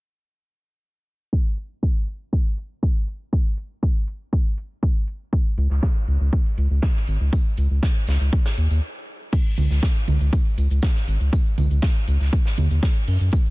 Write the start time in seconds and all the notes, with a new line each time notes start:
1.33 kick
1.58 open hi-hat
1.83 kick
2.08 open hi-hat
2.33 kick
2.58 open hi-hat
2.83 kick
3.08 open hi-hat
3.33 kick
3.58 open hi-hat
3.83 kick
4.08 open hi-hat
4.33 kick
4.58 open hi-hat
4.83 kick
5.08 open hi-hat
5.33 kick, tambourine
5.57 C#2, open hi-hat, tambourine
5.70 C#2, snare
5.83 kick, snare, tambourine
6.07 C#2, open hi-hat, tambourine
6.21 C#2
6.33 kick, tambourine
6.46 closed hi-hat
6.57 C#2, open hi-hat, tambourine
6.71 C#2
6.82 kick, snare, tambourine
6.96 snare
7.07 G#1, open hi-hat, tambourine
7.21 C#2
7.33 kick, tambourine
7.57 C#2, open hi-hat, tambourine
7.71 C#2
7.83 kick, snare, tambourine
8.07 C#2, snare, open hi-hat, tambourine
8.21 C#2
8.32 kick, tambourine
8.46 snare, tambourine
8.58 D#2, open hi-hat
8.70 D#2, tambourine
9.33 kick, crash, tambourine, shaker
9.46 shaker
9.58 C#2, open hi-hat, tambourine, low conga
9.70 C#2, snare, shaker
9.83 kick, snare, tambourine, shaker
9.96 shaker
10.08 C#2, open hi-hat, tambourine, low conga
10.21 C#2, shaker
10.33 kick, tambourine, shaker
10.45 closed hi-hat, shaker
10.58 C#2, open hi-hat, tambourine
10.71 C#2, shaker
10.82 kick, snare, tambourine, shaker
10.95 snare, shaker
11.08 G#1, open hi-hat, tambourine
11.21 C#2, shaker
11.33 kick, tambourine, shaker
11.46 shaker
11.58 C#2, open hi-hat, tambourine, low conga
11.71 C#2, shaker
11.82 kick, snare, tambourine, shaker
11.96 shaker
12.07 C#2, open hi-hat, tambourine
12.21 C#2, snare, shaker
12.33 kick, tambourine, shaker
12.46 snare, shaker
12.57 D#2, open hi-hat, tambourine, low conga
12.71 D#2, shaker
12.82 kick, snare, tambourine, shaker
12.96 shaker
13.07 F#2, open hi-hat
13.21 F#2, closed hi-hat, shaker
13.32 kick, tambourine, shaker
13.46 shaker